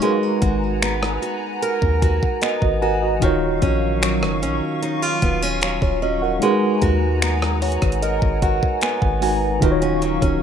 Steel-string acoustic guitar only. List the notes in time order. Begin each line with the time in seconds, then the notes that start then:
Already playing: D#3 C#4
0.02 G#3
0.42 F#4
0.82 B3
1.22 F#4
1.62 A#4
2.02 F#4
2.42 B3
2.82 F#4
3.22 D#3
3.62 C#4
4.02 F#3
4.42 C#4
4.82 D#4
5.02 F4
5.22 B3
5.42 C#4
5.62 F#3
6.02 C#4
6.42 G#3
6.82 F#4
7.22 B3
7.63 F#4
8.02 A#4
8.42 F#4
8.82 B3
9.22 F#4
9.62 D#3
9.82 C#4
10.02 F#3
10.22 C#4